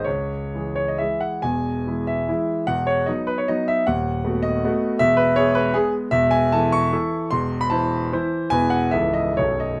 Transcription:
<<
  \new Staff \with { instrumentName = "Grand piano" } { \time 3/4 \key cis \minor \tempo 4 = 150 cis''4. cis''16 dis''16 e''8 fis''8 | \key e \major gis''4. e''4. | fis''8 cis''8 dis''8 b'16 cis''16 dis''8 e''8 | fis''4. dis''4. |
e''8 b'8 cis''8 b'8 gis'8 r8 | e''8 gis''8 a''8 cis'''4. | c'''8. b''16 a''4. r8 | gis''8 fis''8 e''8 dis''8 cis''8 dis''8 | }
  \new Staff \with { instrumentName = "Grand piano" } { \clef bass \time 3/4 \key cis \minor cis,4 <e gis gis'>4 <e gis gis'>4 | \key e \major <e,, e,>4 <e gis e'>4 <e gis e'>4 | <e,, e,>4 <fis b dis'>4 <fis b dis'>4 | <dis,, dis,>4 <a b fis'>4 <a b fis'>4 |
<e,, e,>4 <gis b gis'>4 <gis b>4 | <e,, e,>4 <e e' a'>4 <e e' a'>4 | <e,, e,>4 <e e' c''>4 <e e' c''>4 | <e,, e, e e' b'>4 <cis,, cis, e e' a'>4 <b,,, b,, fis b a'>4 | }
>>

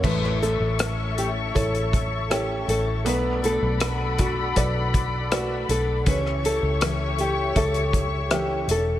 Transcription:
<<
  \new Staff \with { instrumentName = "String section" } { \time 4/4 \key a \mixolydian \tempo 4 = 80 <a' cis'' e'' cis'''>1 | <a' d'' fis'' b''>1 | <g' cis'' e'' cis'''>1 | }
  \new Staff \with { instrumentName = "Nylon-string guitar" } { \time 4/4 \key a \mixolydian b'8 a'4 g'8 a'4 g'8 a'8 | b'8 a'4 fis'4. fis'8 a'8 | b'8 a'4 g'8 a'4 g'8 a'8 | }
  \new Staff \with { instrumentName = "Upright piano" } { \time 4/4 \key a \mixolydian a2 <e' a' cis''>4 <e' a' cis''>4 | b2 <a' b' d''>4 <a' b' d''>4 | cis'2 <g' cis'' e''>4 <g' cis'' e''>4 | }
  \new Staff \with { instrumentName = "Steel-string acoustic guitar" } { \time 4/4 \key a \mixolydian <a, e a cis' e' a'>8 <a cis' e' a'>8 <a cis' e' a'>8 <a cis' e' a'>4. <a cis' e' a'>8 <a cis' e' a'>8 | <b, fis a d' fis'>8 <a d' fis'>8 <fis a d' fis'>8 <a d' fis'>4. <fis a d' fis'>8 <a d' fis'>8 | <cis e cis' e' g'>8 <cis' e' g'>8 <e cis' e' g'>8 <cis' e' g'>4. <e cis' e' g'>8 <cis' e' g'>8 | }
  \new Staff \with { instrumentName = "Fingered electric bass" } { \clef bass \time 4/4 \key a \mixolydian a,,8. a,,4~ a,,16 a,,4. a,,8 | b,,8. b,,4~ b,,16 b,,4. b,,8 | cis,8. cis,4~ cis,16 cis,4. e,,8 | }
  \new DrumStaff \with { instrumentName = "Drums" } \drummode { \time 4/4 <cymc bd>16 ss16 hh8 <hh ss>8 hh8 <hh bd>16 hh16 <hh bd>8 <hh ss>8 hh8 | hh8 hh8 <hh ss>8 <hh bd>8 <hh bd>8 <hh bd>8 <hh ss>8 hh8 | <hh bd>16 ss16 hh8 <hh ss>8 hh8 <hh bd>16 hh16 <hh bd>8 <hh ss>8 hh8 | }
>>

